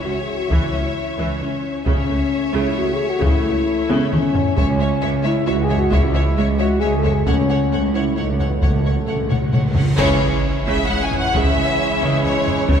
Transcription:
Already playing: E3 C#4 C#5 E5, impact
0.04 C#2 C#4 F#4
0.21 G#4
0.37 F#4
0.50 C#2 E3 E4, taiko
0.72 C#2 C#4
1.18 C#2 E3
1.40 C#2 C#4
1.85 C#2 C#3 E3 A3 C#4 C#5 E5, taiko
2.08 C#2 A3
2.53 C#2 C#3 E4
2.75 C#2 A3 F#4
2.93 G#4
3.09 F#4
3.20 C#2 C#3 E4, taiko
3.43 C#2 A3
3.89 C#2 C#3, taiko high
4.11 C#2 A3 C#4, taiko mid
4.35 taiko low
4.55 C#2 E3 G#3 C#4 C#5 E5, taiko
4.77 G#3 C#5 E5
5.02 C#2 G#3 C#5 E5
5.23 G#3 E4 C#5 E5
5.46 C#2 G#3 F#4 C#5 E5
5.63 G#4
5.68 G#3 C#5 E5, taiko low
5.78 F#4
5.90 C#2 G#3 E4 C#5 E5, taiko
6.13 G#3 C#5 E5
6.37 C#2 G#3 C#5 E5
6.58 G#3 F#4 C#5 E5
6.80 C#2 G#3 G#4 C#5 E5
6.97 A4
7.03 G#3 C#5 E5, taiko low
7.12 G#4
7.25 C#2 C#3 F#3 A3 C#4 C#5 F#5, taiko
7.35 C#3
7.43 C#3
7.48 C#3 A3 C#5 F#5
7.57 C#3
7.64 C#3
7.72 C#2 A3 C#5 F#5
7.80 C#3
7.87 C#3
7.93 C#3 A3 E4 C#5 F#5
8.02 C#3
8.10 C#3
8.16 C#2 C#3 A3 D#4 C#5 F#5
8.24 C#3
8.31 C#3 C#4
8.39 C#3 A3 C#5 F#5, taiko low
8.47 C#3 B3
8.55 C#3
8.62 C#2 C#3 A3 C#5 F#5, taiko, cymbal swell
8.70 C#3
8.77 C#3
8.84 C#3 A3 C#5 F#5
8.93 C#3
9.00 C#3
9.06 C#2 C#3 A3 C#5 F#5
9.16 C#3
9.23 C#3
9.30 C#3 A3 C#5 F#5, taiko low-mid
9.38 C#3
9.45 C#3
9.53 C#2 C#3 A3 C#5 F#5, taiko low-mid
9.60 C#3
9.68 C#3
9.75 C#3 A3 C#5 F#5, taiko low
9.82 C#3
9.90 C#3
9.98 C#2 C#3 E3 G#3 C#4 E4 G#4 C#5, concert bass drum, taiko, crash, sub drop
10.21 C#2 G#3
10.66 C#2 C#3 E5
10.89 C#2 G#3 F#5
11.03 G#5
11.11 taiko low
11.18 F#5
11.34 C#2 C#3 E5, taiko
11.56 C#2 G#3
12.01 C#2 C#3
12.24 C#2 G#3 C#5
12.47 taiko low
12.68 C#2 C#3 E3 A3 C#4 E4 A4 C#5, taiko

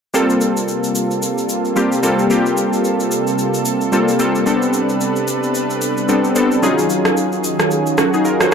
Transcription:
0.14 C3 G3 A#3 C4 F4 A4, shaker
0.30 shaker
0.41 shaker
0.57 shaker
0.68 shaker
0.84 shaker
0.95 shaker
1.11 shaker
1.22 shaker
1.38 shaker
1.49 shaker
1.65 shaker
1.76 G3 A#3 C4 F4 G4, shaker
1.92 shaker
2.03 G3 A#3 C4 F4 A4, shaker
2.19 shaker
2.30 G3 A#3 C4 F4 G4, shaker
2.46 shaker
2.57 shaker
2.73 shaker
2.84 shaker
3.00 shaker
3.11 shaker
3.27 shaker
3.38 shaker
3.54 shaker
3.65 shaker
3.81 shaker
3.92 G3 A#3 C4 F4 A4, shaker
4.08 shaker
4.19 G3 A#3 C4 F4 A4, shaker
4.35 shaker
4.46 G3 B3 C4 D4 A4 B4, shaker
4.62 shaker
4.73 shaker
4.89 shaker
5.01 shaker
5.16 shaker
5.28 shaker
5.43 shaker
5.55 shaker
5.70 shaker
5.81 shaker
5.97 shaker
6.08 G3 B3 C4 D4 A4, shaker
6.24 shaker
6.35 G3 B3 C4 D4 A4, shaker
6.51 shaker
6.62 D#3 F#3 C#4 D#4 F4 G#4, shaker
6.78 shaker
6.90 shaker
7.05 cross-stick, shaker
7.17 shaker
7.32 shaker
7.44 shaker
7.60 cross-stick, shaker
7.71 shaker
7.86 shaker
7.98 C#4 F#4, cross-stick, shaker
8.14 D#4 G#4, shaker
8.25 F4 A#4, shaker
8.40 F#4 C5, cross-stick, shaker

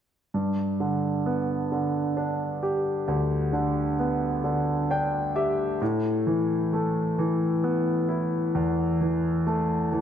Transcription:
0.34 G2
0.80 D3
1.26 B3
1.72 D3
2.17 D4
2.63 G4
3.08 D2
3.53 D3
3.99 B3
4.44 D3
4.91 D4 G5
5.36 G4 E5
5.81 A2
6.27 E3
6.73 A3
7.18 E3
7.64 B3
8.09 E4
8.55 E2
9.01 E3
9.47 A3
9.92 E3

